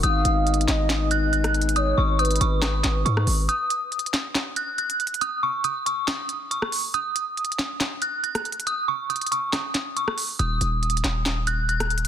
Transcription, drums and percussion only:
0.03 closed hi-hat medium
0.25 closed hi-hat loud
0.47 closed hi-hat soft
0.54 closed hi-hat medium
0.61 closed hi-hat medium
0.68 snare medium
0.68 clap medium
0.68 closed hi-hat medium
0.90 snare loud
0.90 clap medium
0.90 closed hi-hat medium
1.11 closed hi-hat medium
1.33 closed hi-hat soft
1.44 cross-stick medium
1.44 closed hi-hat medium
1.54 closed hi-hat soft
1.62 closed hi-hat medium
1.69 closed hi-hat medium
1.76 closed hi-hat medium
2.19 closed hi-hat soft
2.25 closed hi-hat medium
2.31 closed hi-hat medium
2.36 closed hi-hat medium
2.41 closed hi-hat medium
2.62 cross-stick medium
2.62 snare loud
2.62 clap medium
2.62 closed hi-hat medium
2.84 snare medium
2.84 clap medium
2.84 closed hi-hat medium
3.06 closed hi-hat medium
3.17 cross-stick medium
3.27 open hi-hat medium
3.49 closed hi-hat medium
3.70 closed hi-hat medium
3.92 closed hi-hat soft
3.99 closed hi-hat medium
4.06 closed hi-hat medium
4.14 snare loud
4.14 clap medium
4.14 closed hi-hat medium
4.35 snare loud
4.35 clap medium
4.35 closed hi-hat medium
4.56 closed hi-hat medium
4.78 closed hi-hat soft
4.90 closed hi-hat medium
5.00 closed hi-hat soft
5.07 closed hi-hat medium
5.14 closed hi-hat medium
5.21 closed hi-hat medium
5.64 closed hi-hat medium
5.86 closed hi-hat medium
6.08 snare loud
6.08 clap medium
6.08 closed hi-hat medium
6.29 closed hi-hat medium
6.51 closed hi-hat medium
6.62 cross-stick medium
6.72 open hi-hat medium
6.94 closed hi-hat medium
7.16 closed hi-hat medium
7.37 closed hi-hat soft
7.45 closed hi-hat medium
7.52 closed hi-hat medium
7.59 snare medium
7.59 clap medium
7.59 closed hi-hat medium
7.80 snare loud
7.80 clap medium
7.80 closed hi-hat medium
8.02 closed hi-hat medium
8.24 closed hi-hat soft
8.35 cross-stick medium
8.35 closed hi-hat medium
8.45 closed hi-hat soft
8.52 closed hi-hat medium
8.60 closed hi-hat medium
8.67 closed hi-hat medium
9.10 closed hi-hat soft
9.16 closed hi-hat medium
9.21 closed hi-hat medium
9.27 closed hi-hat medium
9.32 closed hi-hat medium
9.53 cross-stick medium
9.53 snare loud
9.53 clap medium
9.53 closed hi-hat medium
9.74 snare medium
9.74 clap medium
9.74 closed hi-hat medium
9.97 closed hi-hat medium
10.08 cross-stick medium
10.18 open hi-hat medium
10.39 closed hi-hat medium
10.61 closed hi-hat medium
10.83 closed hi-hat soft
10.90 closed hi-hat medium
10.97 closed hi-hat medium
11.04 snare medium
11.04 clap medium
11.04 closed hi-hat medium
11.26 snare loud
11.26 clap medium
11.26 closed hi-hat medium
11.47 closed hi-hat medium
11.69 closed hi-hat soft
11.80 cross-stick medium
11.80 closed hi-hat medium
11.90 closed hi-hat soft
11.98 closed hi-hat medium

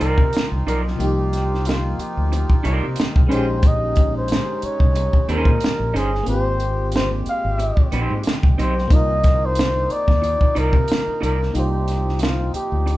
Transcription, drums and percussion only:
0.01 closed hi-hat medium
0.18 kick medium
0.33 snare loud
0.33 closed hi-hat medium
0.68 closed hi-hat medium
0.88 snare soft
1.00 closed hi-hat medium
1.33 snare soft
1.33 closed hi-hat medium
1.54 snare soft
1.65 closed hi-hat medium
1.69 snare loud
2.00 closed hi-hat medium
2.33 closed hi-hat medium
2.50 kick medium
2.65 closed hi-hat medium
2.96 snare loud
2.96 closed hi-hat medium
3.16 kick loud
3.31 closed hi-hat medium
3.63 kick loud
3.63 closed hi-hat medium
3.96 kick medium
3.96 closed hi-hat medium
4.28 closed hi-hat medium
4.32 snare loud
4.62 closed hi-hat medium
4.80 kick medium
4.95 closed hi-hat medium
5.13 kick medium
5.29 closed hi-hat medium
5.45 kick medium
5.60 snare loud
5.60 closed hi-hat medium
5.96 closed hi-hat medium
6.15 snare soft
6.26 closed hi-hat medium
6.60 closed hi-hat medium
6.92 closed hi-hat medium
6.96 snare loud
7.26 closed hi-hat medium
7.59 closed hi-hat medium
7.77 kick medium
7.92 closed hi-hat medium
8.23 snare loud
8.23 closed hi-hat medium
8.43 kick medium
8.59 closed hi-hat medium
8.78 snare soft
8.90 kick loud
8.90 closed hi-hat medium
9.24 kick medium
9.24 snare soft
9.24 closed hi-hat medium
9.55 closed hi-hat medium
9.59 snare loud
9.90 closed hi-hat medium
10.08 kick medium
10.08 snare soft
10.24 closed hi-hat medium
10.41 kick medium
10.56 closed hi-hat medium
10.73 kick medium
10.88 snare loud
10.88 closed hi-hat medium
11.23 closed hi-hat medium
11.43 snare soft
11.55 closed hi-hat medium
11.88 snare soft
11.88 closed hi-hat medium
12.09 snare soft
12.19 closed hi-hat medium
12.23 snare loud
12.54 closed hi-hat medium
12.87 closed hi-hat medium

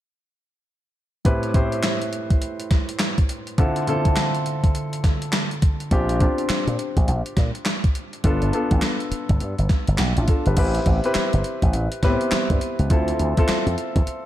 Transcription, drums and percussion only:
1.25 kick loud
1.25 closed hi-hat medium
1.43 closed hi-hat medium
1.54 kick medium
1.54 closed hi-hat medium
1.72 closed hi-hat medium
1.83 snare loud
1.83 clap medium
1.83 closed hi-hat medium
2.02 closed hi-hat soft
2.13 closed hi-hat medium
2.30 kick medium
2.30 closed hi-hat soft
2.42 closed hi-hat medium
2.60 closed hi-hat medium
2.71 kick medium
2.71 snare medium
2.71 closed hi-hat medium
2.89 closed hi-hat medium
2.99 snare loud
2.99 clap medium
2.99 closed hi-hat medium
3.18 kick medium
3.18 closed hi-hat soft
3.29 closed hi-hat medium
3.47 closed hi-hat soft
3.58 kick loud
3.58 closed hi-hat medium
3.76 closed hi-hat medium
3.87 closed hi-hat medium
4.05 kick medium
4.05 closed hi-hat medium
4.16 snare loud
4.16 clap medium
4.16 closed hi-hat medium
4.35 closed hi-hat medium
4.46 closed hi-hat medium
4.64 kick medium
4.64 closed hi-hat medium
4.75 closed hi-hat medium
4.93 closed hi-hat medium
5.04 kick medium
5.04 snare medium
5.04 closed hi-hat medium
5.22 closed hi-hat medium
5.32 snare loud
5.32 clap medium
5.32 closed hi-hat medium
5.51 closed hi-hat soft
5.62 kick medium
5.62 closed hi-hat medium
5.80 closed hi-hat soft
5.91 kick loud
5.91 closed hi-hat medium
6.09 closed hi-hat medium
6.20 kick medium
6.20 closed hi-hat medium
6.38 closed hi-hat medium
6.49 snare loud
6.49 clap medium
6.49 closed hi-hat medium
6.68 closed hi-hat medium
6.79 closed hi-hat medium
6.97 kick medium
6.97 closed hi-hat medium
7.08 closed hi-hat medium
7.26 closed hi-hat medium
7.37 kick medium
7.37 snare medium
7.37 closed hi-hat medium
7.55 closed hi-hat medium
7.65 snare loud
7.65 clap medium
7.65 closed hi-hat medium
7.84 kick medium
7.84 closed hi-hat soft
7.95 closed hi-hat medium
8.13 closed hi-hat soft
8.24 kick loud
8.24 closed hi-hat medium
8.42 closed hi-hat medium
8.53 closed hi-hat medium
8.71 kick loud
8.71 closed hi-hat medium
8.82 snare loud
8.82 clap medium
8.82 closed hi-hat medium
9.00 closed hi-hat medium
9.12 closed hi-hat medium
9.29 kick medium
9.29 closed hi-hat medium
9.40 closed hi-hat medium
9.59 closed hi-hat medium
9.69 kick medium
9.69 snare medium
9.69 closed hi-hat medium
9.87 closed hi-hat medium
9.98 snare loud
9.98 clap loud
9.98 closed hi-hat medium
10.17 closed hi-hat medium
10.28 kick medium
10.28 closed hi-hat medium
10.46 closed hi-hat soft
10.57 kick loud
10.57 closed hi-hat medium
10.57 crash medium
10.75 closed hi-hat medium
10.86 kick medium
10.86 closed hi-hat medium
11.04 closed hi-hat medium
11.14 snare loud
11.14 clap medium
11.14 closed hi-hat medium
11.33 closed hi-hat medium
11.44 closed hi-hat medium
11.62 kick medium
11.62 closed hi-hat medium
11.73 closed hi-hat medium
11.92 closed hi-hat medium
12.03 kick medium
12.03 snare medium
12.03 closed hi-hat medium
12.21 closed hi-hat medium
12.31 snare loud
12.31 clap medium
12.31 closed hi-hat medium
12.50 kick medium
12.50 closed hi-hat medium
12.61 closed hi-hat medium
12.79 closed hi-hat soft
12.90 kick loud
12.90 closed hi-hat medium
13.08 closed hi-hat medium
13.19 closed hi-hat medium
13.37 kick medium
13.37 closed hi-hat medium
13.48 snare loud
13.48 clap medium
13.48 closed hi-hat medium
13.67 closed hi-hat soft
13.78 closed hi-hat medium
13.96 kick medium
13.96 closed hi-hat medium
14.07 closed hi-hat medium

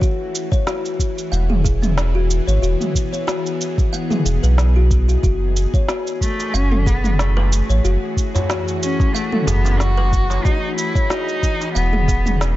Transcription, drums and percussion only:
0.02 kick loud
0.02 shaker soft
0.35 shaker medium
0.52 kick loud
0.52 shaker soft
0.67 snare medium
0.67 shaker soft
0.85 shaker soft
0.99 kick medium
0.99 shaker medium
1.18 shaker soft
1.33 shaker soft
1.50 mid tom medium
1.65 kick medium
1.65 shaker medium
1.83 mid tom medium
1.83 shaker soft
1.98 snare loud
1.98 shaker soft
2.31 shaker medium
2.48 shaker soft
2.63 shaker soft
2.81 mid tom medium
2.81 shaker soft
2.95 kick medium
2.95 shaker medium
3.14 shaker soft
3.28 snare loud
3.28 shaker soft
3.46 shaker soft
3.61 shaker medium
3.78 kick medium
3.78 shaker soft
3.94 shaker soft
4.11 mid tom medium
4.11 shaker soft
4.26 shaker medium
4.44 shaker soft
4.58 snare loud
4.58 shaker soft
4.91 kick loud
4.91 shaker medium
5.09 shaker soft
5.23 kick loud
5.23 shaker soft
5.57 shaker medium
5.74 kick loud
5.74 shaker soft
5.89 snare loud
5.89 shaker soft
6.07 shaker soft
6.21 kick medium
6.21 shaker medium
6.40 darbuka ka medium
6.40 shaker soft
6.55 shaker soft
6.72 mid tom medium
6.87 kick loud
6.87 shaker medium
7.04 mid tom medium
7.04 shaker soft
7.19 snare medium
7.19 shaker soft
7.37 darbuka tek medium
7.53 shaker medium
7.70 shaker soft
7.85 shaker soft
8.17 kick medium
8.17 shaker medium
8.35 darbuka dum medium
8.35 shaker soft
8.50 snare loud
8.50 shaker soft
8.68 shaker soft
8.83 shaker medium
9.00 kick loud
9.00 darbuka ka medium
9.00 shaker soft
9.16 shaker soft
9.32 mid tom medium
9.47 darbuka ka soft
9.47 darbuka dum medium
9.47 shaker medium
9.65 darbuka ka medium
9.65 darbuka tek medium
9.65 shaker soft
9.80 snare medium
9.80 shaker soft
9.98 darbuka ka soft
9.98 darbuka tek medium
10.13 kick loud
10.13 shaker medium
10.30 darbuka ka medium
10.30 darbuka tek medium
10.30 shaker soft
10.45 kick loud
10.45 shaker soft
10.78 shaker medium
10.95 kick loud
10.95 shaker soft
11.10 snare loud
11.10 shaker soft
11.29 shaker soft
11.43 kick medium
11.43 shaker medium
11.61 darbuka ka medium
11.61 shaker soft
11.76 shaker soft
11.93 mid tom medium
12.08 kick loud
12.08 shaker medium
12.26 mid tom medium
12.26 shaker soft
12.41 snare medium
12.41 shaker soft

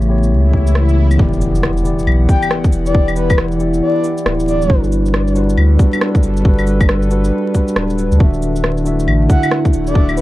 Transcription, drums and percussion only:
0.02 shaker soft
0.23 shaker medium
0.53 kick medium
0.67 shaker medium
0.75 cross-stick loud
0.89 shaker soft
1.11 claves soft
1.11 shaker medium
1.19 kick loud
1.33 shaker soft
1.41 cabasa medium
1.55 shaker medium
1.63 cross-stick loud
1.77 shaker soft
1.85 cabasa medium
1.99 shaker medium
2.07 claves medium
2.29 kick loud
2.29 cabasa medium
2.43 claves medium
2.43 shaker medium
2.51 cross-stick loud
2.64 kick loud
2.64 shaker soft
2.72 cabasa medium
2.86 shaker medium
2.95 kick loud
3.08 claves medium
3.08 shaker soft
3.16 cabasa medium
3.30 kick loud
3.30 claves medium
3.30 shaker medium
3.38 cross-stick loud
3.52 shaker soft
3.60 cabasa medium
3.74 shaker medium
4.04 cabasa medium
4.18 shaker medium
4.26 cross-stick loud
4.40 shaker soft
4.48 cabasa medium
4.62 shaker medium
4.70 kick loud
4.84 shaker soft
4.92 cabasa medium
5.06 shaker medium
5.14 cross-stick loud
5.28 shaker soft
5.36 cabasa medium
5.49 shaker medium
5.57 claves medium
5.79 kick loud
5.79 cabasa medium
5.93 claves medium
5.93 shaker medium
6.01 cross-stick loud
6.15 kick loud
6.15 shaker soft
6.23 cabasa medium
6.37 shaker medium
6.45 kick loud
6.59 claves soft
6.59 shaker soft
6.67 cabasa medium
6.81 kick loud
6.81 claves medium
6.81 shaker medium
6.89 cross-stick loud
7.02 shaker soft
7.11 cabasa medium
7.24 shaker medium
7.54 kick medium
7.54 cabasa medium
7.68 shaker medium
7.76 cross-stick loud
7.90 shaker soft
7.98 cabasa medium
8.12 shaker medium
8.20 kick loud
8.34 shaker soft
8.42 cabasa medium
8.56 shaker medium
8.64 cross-stick loud
8.77 shaker soft
8.86 cabasa medium
9.00 shaker medium
9.08 claves medium
9.30 kick loud
9.30 cabasa medium
9.43 claves medium
9.43 shaker medium
9.51 cross-stick loud
9.65 kick loud
9.65 shaker soft
9.73 cabasa medium
9.87 shaker medium
9.95 kick loud
10.09 claves medium
10.09 shaker soft
10.17 cabasa medium

